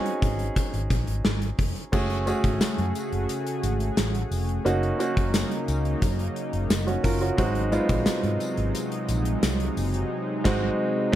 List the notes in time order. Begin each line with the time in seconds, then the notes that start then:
Already playing: C4 C#4 D#4 F#4 G#4
0.06 closed hi-hat
0.22 G#1, kick, closed hi-hat
0.39 closed hi-hat
0.56 kick, closed hi-hat
0.74 G#1, closed hi-hat
0.90 A#1, kick, closed hi-hat
1.07 G#1, closed hi-hat
1.25 G#1, snare
1.42 closed hi-hat
1.59 F1, kick, open hi-hat
1.76 closed hi-hat
1.92 F#1 C#3 A3 C#4 F#4 G#4, kick, crash, tambourine
2.10 closed hi-hat
2.26 A3 C#4 F#4 G#4, closed hi-hat, tambourine
2.44 G#1, kick, closed hi-hat
2.61 muted fingered electric bass stroke, snare, closed hi-hat, tambourine
2.78 F#2, closed hi-hat
2.95 closed hi-hat, tambourine
3.12 F#1, closed hi-hat
3.29 closed hi-hat, tambourine
3.47 closed hi-hat
3.63 G#1, closed hi-hat, tambourine
3.80 closed hi-hat
3.97 A1, snare, closed hi-hat, tambourine
4.15 closed hi-hat
4.31 F1, open hi-hat, tambourine
4.49 closed hi-hat
4.65 F#1 C#3 F#3 A#3 C#4 D#4 F#4, closed hi-hat, tambourine
4.83 closed hi-hat
4.99 A#3 C#4 D#4 F#4, closed hi-hat, tambourine
5.17 F#1, kick, closed hi-hat
5.34 snare, closed hi-hat, tambourine
5.52 closed hi-hat
5.68 C#2, closed hi-hat, tambourine
5.85 closed hi-hat
6.02 F#2, kick, closed hi-hat, tambourine
6.19 closed hi-hat
6.36 closed hi-hat
6.53 F#1, closed hi-hat
6.70 F#1, snare, closed hi-hat, tambourine
6.87 C#4 F#4, closed hi-hat
7.04 F#1 F4 A#4, kick, open hi-hat, tambourine
7.21 C#4 F#4, closed hi-hat
7.37 G#1 C3 G#3 C4 D#4 F#4, kick, closed hi-hat
7.55 closed hi-hat
7.72 G#3 B3 D#4 F4, closed hi-hat, tambourine
7.78 C4
7.89 A#1, kick, closed hi-hat
8.06 muted fingered electric bass stroke, snare, closed hi-hat, tambourine
8.23 G#2, closed hi-hat
8.40 closed hi-hat, tambourine
8.57 G#1, closed hi-hat
8.75 closed hi-hat, tambourine
8.92 closed hi-hat
9.09 A#1, closed hi-hat, tambourine
9.25 closed hi-hat
9.42 C2, snare, closed hi-hat, tambourine
9.60 closed hi-hat
9.77 F#1, open hi-hat, tambourine
9.94 closed hi-hat
10.44 G#1 G#3 C4 D#4 F#4, kick, snare, crash
11.12 G#3